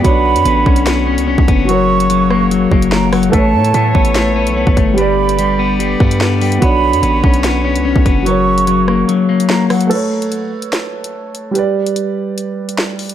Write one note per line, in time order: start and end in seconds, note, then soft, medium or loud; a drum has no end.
0.00 1.65 B3 medium
0.00 1.64 B3 medium
0.00 1.65 F#4 medium
0.04 0.37 B1 loud
0.04 1.67 D3 medium
0.04 0.44 B3 medium
0.04 1.67 D4 medium
0.04 3.30 F#4 medium
0.04 3.30 C#5 medium
0.04 1.66 C#5 medium
0.04 0.82 B5 loud
0.04 kick loud
0.04 closed hi-hat medium
0.35 0.45 F#2 loud
0.35 closed hi-hat medium
0.45 0.65 A1 loud
0.45 0.85 B3 medium
0.45 closed hi-hat medium
0.66 1.19 B1 loud
0.66 1.06 C#4 medium
0.66 kick loud
0.76 closed hi-hat medium
0.87 1.47 B3 medium
0.87 snare loud
0.87 closed hi-hat medium
1.07 1.26 C#4 medium
1.17 1.29 C#2 loud
1.17 closed hi-hat medium
1.28 1.37 B1 loud
1.28 1.69 C#4 medium
1.38 1.48 B1 loud
1.38 kick loud
1.48 2.68 F#1 loud
1.48 1.69 B3 medium
1.48 kick loud
1.48 closed hi-hat medium
1.65 3.32 C#3 medium
1.65 3.28 F#3 medium
1.65 2.09 F#3 medium
1.65 3.32 A#3 medium
1.65 3.29 F#4 medium
1.65 2.47 C#6 loud
1.65 closed hi-hat medium
1.70 3.30 A#4 medium
1.70 3.32 C#5 medium
2.00 closed hi-hat medium
2.10 2.50 F#3 medium
2.10 closed hi-hat medium
2.30 2.70 A#3 medium
2.30 cross-stick medium
2.51 3.11 F#3 medium
2.51 closed hi-hat medium
2.72 3.31 F#1 loud
2.72 2.91 A#3 medium
2.72 kick medium
2.82 closed hi-hat medium
2.92 3.33 A#3 medium
2.92 3.12 A#5 medium
2.92 snare loud
3.12 3.33 F#3 medium
3.12 3.32 F#5 medium
3.12 cross-stick loud
3.12 open hi-hat medium
3.23 closed hi-hat medium
3.29 3.55 A1 loud
3.29 4.96 E3 medium
3.29 4.92 A3 medium
3.29 3.73 A3 loud
3.29 8.22 B3 medium
3.29 4.94 A4 medium
3.29 4.96 A4 medium
3.29 4.96 C#5 medium
3.29 4.11 A5 loud
3.29 kick loud
3.29 closed hi-hat medium
3.34 4.95 B4 medium
3.34 4.96 C#5 medium
3.54 3.73 A2 loud
3.65 closed hi-hat medium
3.74 3.94 A2 loud
3.74 4.14 A3 medium
3.74 closed hi-hat medium
3.95 4.48 A1 loud
3.95 4.35 B3 medium
3.95 kick loud
4.05 closed hi-hat medium
4.15 4.76 A3 medium
4.15 snare loud
4.15 closed hi-hat medium
4.36 4.55 B3 medium
4.46 4.66 B1 loud
4.46 closed hi-hat medium
4.57 4.98 B3 medium
4.67 4.76 A1 loud
4.67 kick loud
4.77 5.96 G1 loud
4.77 4.97 A3 medium
4.77 kick loud
4.77 closed hi-hat medium
4.94 8.23 D3 medium
4.94 6.57 G3 medium
4.94 5.38 G3 loud
4.94 6.58 G4 medium
4.94 6.60 G4 medium
4.94 6.60 D5 medium
4.94 5.76 B5 loud
4.98 6.59 B4 medium
4.98 6.60 D5 medium
4.98 closed hi-hat medium
5.29 closed hi-hat medium
5.39 5.78 G3 medium
5.39 closed hi-hat medium
5.59 5.99 B3 medium
5.80 6.40 G3 medium
5.80 closed hi-hat medium
6.00 6.59 G2 loud
6.00 6.20 B3 medium
6.00 kick medium
6.11 closed hi-hat medium
6.21 6.61 B3 medium
6.21 snare loud
6.41 6.62 G3 medium
6.41 6.61 G5 medium
6.41 open hi-hat medium
6.52 closed hi-hat medium
6.58 6.94 B1 loud
6.58 8.21 B3 medium
6.58 7.02 B3 medium
6.58 8.22 F#4 medium
6.58 9.87 F#4 medium
6.58 9.87 C#5 medium
6.58 7.40 B5 loud
6.58 kick loud
6.62 8.25 D4 medium
6.62 8.24 C#5 medium
6.62 closed hi-hat medium
6.93 7.03 F#2 loud
6.93 closed hi-hat medium
7.03 7.23 A1 loud
7.03 7.43 B3 medium
7.03 closed hi-hat medium
7.24 7.76 B1 loud
7.24 7.63 C#4 medium
7.24 kick loud
7.34 closed hi-hat medium
7.44 8.05 B3 medium
7.44 snare loud
7.44 closed hi-hat medium
7.65 7.84 C#4 medium
7.75 7.87 C#2 loud
7.75 closed hi-hat medium
7.85 7.95 B1 loud
7.85 8.26 C#4 medium
7.96 8.05 B1 loud
7.96 kick loud
8.06 9.04 F#1 loud
8.06 8.26 B3 medium
8.06 kick loud
8.06 closed hi-hat medium
8.22 9.89 C#3 medium
8.22 9.85 F#3 medium
8.22 8.66 F#3 medium
8.22 9.89 A#3 medium
8.22 9.87 F#4 medium
8.22 9.04 C#6 loud
8.22 closed hi-hat medium
8.27 9.88 A#4 medium
8.27 9.89 C#5 medium
8.58 closed hi-hat medium
8.67 9.07 F#3 medium
8.67 closed hi-hat medium
8.88 9.28 A#3 medium
8.88 cross-stick medium
9.08 9.69 F#3 medium
9.08 closed hi-hat medium
9.29 9.48 A#3 medium
9.40 closed hi-hat medium
9.49 9.91 A#3 medium
9.49 9.69 A#5 medium
9.49 snare loud
9.69 9.91 F#3 medium
9.69 9.89 F#5 medium
9.69 cross-stick loud
9.69 open hi-hat soft
9.81 closed hi-hat medium
9.87 11.50 A3 medium
9.87 11.51 A4 medium
9.87 closed hi-hat medium
9.87 crash loud
9.92 11.52 B4 medium
9.92 11.54 C#5 medium
10.22 closed hi-hat medium
10.32 closed hi-hat medium
10.62 closed hi-hat medium
10.73 snare loud
10.73 closed hi-hat medium
11.04 closed hi-hat medium
11.35 closed hi-hat medium
11.51 13.14 G3 medium
11.51 13.15 G4 medium
11.55 13.15 B4 medium
11.55 13.15 D5 medium
11.55 closed hi-hat medium
11.86 closed hi-hat medium
11.96 closed hi-hat medium
12.38 closed hi-hat medium
12.69 closed hi-hat medium
12.78 snare loud
12.99 open hi-hat soft
13.09 closed hi-hat medium